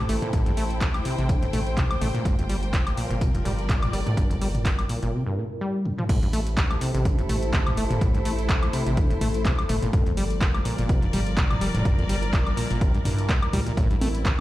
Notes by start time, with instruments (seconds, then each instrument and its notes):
Already playing: ambient pad A3 G4 C5, string section E4 A4 C5 G5
0.09 analog synth bass A1, acid bass A3, open hi-hat
0.22 acid bass A#2, mid tom
0.33 analog synth bass A1, acid bass A2, kick, closed hi-hat
0.46 analog synth bass A1, acid bass G2, closed hi-hat
0.57 acid bass A3, open hi-hat
0.70 closed hi-hat
0.81 kick, clap, closed hi-hat
0.94 closed hi-hat, high woodblock
1.05 acid bass C3, open hi-hat
1.18 analog synth bass A1, acid bass C3, closed hi-hat
1.29 acid bass D3, kick, closed hi-hat
1.42 analog synth bass G1, acid bass A2, closed hi-hat
1.53 analog synth bass A1, acid bass A3, open hi-hat, mid tom
1.67 closed hi-hat
1.77 acid bass C3, kick, clap, closed hi-hat
1.91 closed hi-hat, high woodblock
2.01 analog synth bass A1, acid bass A3, open hi-hat, mid tom
2.14 acid bass A#2, closed hi-hat
2.25 analog synth bass G1, acid bass G2, string section F3, ambient pad G3 F4 A#4, kick, closed hi-hat
2.38 analog synth bass G1, acid bass F2, closed hi-hat
2.49 acid bass G3, string section A#4, open hi-hat
2.63 closed hi-hat
2.73 kick, clap, closed hi-hat
2.87 closed hi-hat, high woodblock
2.97 acid bass A#2, open hi-hat
3.10 analog synth bass G1, acid bass A#2, closed hi-hat
3.21 acid bass C3, kick, closed hi-hat
3.34 analog synth bass F1, acid bass G2, closed hi-hat
3.43 analog synth bass G1, acid bass G3, string section D5, open hi-hat, mid tom
3.59 closed hi-hat
3.69 acid bass A#2, kick, clap, closed hi-hat
3.83 closed hi-hat, mid tom, high woodblock
3.93 analog synth bass G1, acid bass G3, open hi-hat
4.06 acid bass A2, closed hi-hat, mid tom
4.17 analog synth bass G1, acid bass G2, ambient pad E4, kick, closed hi-hat
4.30 analog synth bass G1, acid bass F2, closed hi-hat
4.41 acid bass G3, open hi-hat
4.55 closed hi-hat, mid tom
4.65 kick, clap, closed hi-hat
4.79 closed hi-hat, high woodblock
4.89 acid bass A#2, open hi-hat
5.02 analog synth bass G1, acid bass A#2, closed hi-hat
5.13 acid bass C3
5.26 acid bass G2
5.37 acid bass A#2
5.61 acid bass G3
5.85 acid bass F2, high tom
5.98 acid bass F3, mid tom
6.09 analog synth bass A1, acid bass A2, ambient pad A3 G4 C5, string section E4, kick, closed hi-hat, crash
6.22 analog synth bass A1, acid bass G2, closed hi-hat
6.33 acid bass A3, open hi-hat
6.47 closed hi-hat
6.52 string section A4
6.57 kick, clap, closed hi-hat
6.71 closed hi-hat, high woodblock
6.81 acid bass C3, open hi-hat
6.94 analog synth bass A1, acid bass C3, closed hi-hat
7.05 acid bass D3, kick, closed hi-hat
7.18 analog synth bass G1, acid bass A2, closed hi-hat
7.29 analog synth bass A1, acid bass A3, open hi-hat, mid tom
7.39 string section C5, closed hi-hat
7.53 acid bass C3, kick, clap, closed hi-hat
7.67 closed hi-hat, mid tom, high woodblock
7.77 analog synth bass G1, acid bass A3, open hi-hat
7.90 analog synth bass G1, acid bass A#2, closed hi-hat, mid tom
8.01 analog synth bass A1, acid bass A2, ambient pad A4, kick, closed hi-hat
8.14 analog synth bass A1, acid bass G2, closed hi-hat
8.25 acid bass A3, open hi-hat
8.39 closed hi-hat
8.49 kick, clap, closed hi-hat
8.63 closed hi-hat, high woodblock
8.73 acid bass C3, open hi-hat
8.86 analog synth bass A1, acid bass C3, closed hi-hat
8.97 acid bass D3, kick, closed hi-hat
9.10 analog synth bass G1, acid bass A2, closed hi-hat
9.21 analog synth bass A1, acid bass A3, open hi-hat, mid tom
9.34 closed hi-hat
9.45 acid bass C3, kick, clap, closed hi-hat
9.59 closed hi-hat, high woodblock
9.69 analog synth bass G1, acid bass A3, open hi-hat, mid tom
9.82 analog synth bass G1, acid bass A#2, closed hi-hat
9.93 analog synth bass G1, acid bass G2, string section F3, ambient pad G3 F4 A#4, kick, closed hi-hat
10.06 analog synth bass G1, acid bass F2, closed hi-hat
10.15 acid bass G3, string section D5, open hi-hat
10.30 closed hi-hat
10.41 string section A#4, kick, clap, closed hi-hat
10.54 closed hi-hat, high woodblock
10.65 acid bass A#2, open hi-hat
10.78 analog synth bass G1, acid bass A#2, closed hi-hat
10.89 acid bass C3, kick, closed hi-hat
11.02 analog synth bass F1, acid bass G2, closed hi-hat
11.13 analog synth bass G1, acid bass G3, open hi-hat, mid tom
11.27 closed hi-hat
11.37 acid bass A#2, kick, clap, closed hi-hat
11.51 closed hi-hat, mid tom, high woodblock
11.61 analog synth bass F1, acid bass G3, open hi-hat
11.74 analog synth bass F1, acid bass A2, closed hi-hat, mid tom
11.85 analog synth bass G1, acid bass G2, ambient pad E4, kick, closed hi-hat
11.98 analog synth bass G1, acid bass F2, closed hi-hat
12.09 acid bass G3, open hi-hat
12.22 closed hi-hat
12.33 kick, clap, closed hi-hat
12.46 closed hi-hat, high woodblock
12.57 acid bass A#2, open hi-hat
12.70 analog synth bass G1, acid bass A#2, closed hi-hat
12.81 acid bass C3, kick, closed hi-hat
12.94 acid bass G2, closed hi-hat
13.05 acid bass G2, open hi-hat, mid tom
13.18 closed hi-hat
13.29 analog synth bass D2, acid bass G3, kick, clap, closed hi-hat
13.42 closed hi-hat, high woodblock
13.53 analog synth bass D2, acid bass G3, open hi-hat, mid tom
13.67 acid bass A#2, closed hi-hat
13.77 analog synth bass A1, acid bass A2, ambient pad A3 G4 C5, string section E4, kick, closed hi-hat
13.90 analog synth bass A1, acid bass G2, closed hi-hat
14.01 acid bass A3, open hi-hat, high conga
14.15 closed hi-hat
14.25 acid bass C3, kick, clap, closed hi-hat
14.33 string section A4